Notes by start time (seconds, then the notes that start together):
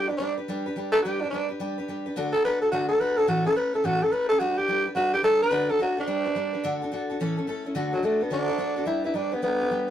0.08 D4 G4 B4
0.17 G3 D4 G4
0.21 B4
0.37 D4 G4 B4
0.48 G3 D4 G4 B4
0.66 D4 G4 B4
0.76 G3 D4 G4 B4
0.92 G4 A4 B4
0.97 D4
1.02 G3 D4 G4 B4
1.21 D4 G4 B4
1.30 G3 D4 G4 B4
1.49 D4 G4 B4
1.60 G3 D4 G4 B4
1.78 D4 G4 B4
1.88 G3 D4 G4 B4
2.06 D4 G4 B4
2.16 D3 A3 D4 F#4 A4
2.33 D4 F#4 A4
2.44 A3 D4 F#4 A4 B4
2.62 D4 F#4 A4
2.72 D3 A3 D4 F#4 A4
2.89 D4 F#4 A4
2.99 A3 D4 F#4 A4 B4
3.17 D4 F#4 A4
3.27 A2 E3 A3 C#4 E4 F#4 A4
3.44 A3 C#4 E4 A4
3.55 A3 C#4 E4 A4 B4
3.74 A3 C#4 E4 A4
3.84 A2 E3 A3 C#4 E4 F#4 A4
4.01 A3 C#4 E4 A4
4.11 A3 C#4 E4 A4 B4
4.29 A3 C#4 E4 A4
4.39 G3 D4 F#4 G4 B4
4.58 D4 G4 B4
4.68 G3 D4 G4 B4
4.86 D4 G4 B4
4.95 G3 D4 F#4 G4 B4
5.13 D4 G4 B4
5.23 G3 D4 G4 A4 B4
5.41 D4 G4 B4
5.50 D3 A3 D4 F#4 A4
5.69 D4 F#4 A4
5.79 A3 D4 F#4 A4
5.97 D4 F#4 A4
6.07 G3 D4 G4 B4
6.25 D4 G4 B4
6.35 G3 D4 G4 B4
6.53 D4 G4 B4
6.64 D3 A3 D4 F#4 A4
6.82 D4 F#4 A4
6.92 A3 D4 F#4 A4
7.10 D4 F#4 A4
7.20 A2 E3 A3 C#4 E4 A4
7.37 A3 C#4 E4 A4
7.47 A3 C#4 E4 A4
7.65 A3 C#4 E4 A4
7.75 D3 A3 D4 F#4 A4
7.93 F#3 D4 F#4 A4
8.03 A3 D4 F#4 A4
8.21 B3 D4 F#4 A4
8.30 D3 A3 D4 F#4 A4
8.48 D4 F#4 A4
8.58 A3 D4 F#4 A4
8.76 D4 F#4 A4
8.86 G3 D4 E4 G4 B4
9.04 D4 E4 G4 B4
9.14 G3 D4 G4 B4
9.32 B3 D4 G4 B4
9.42 G3 B3 D4 G4 B4
9.60 D4 G4 B4
9.71 G3 D4 G4 B4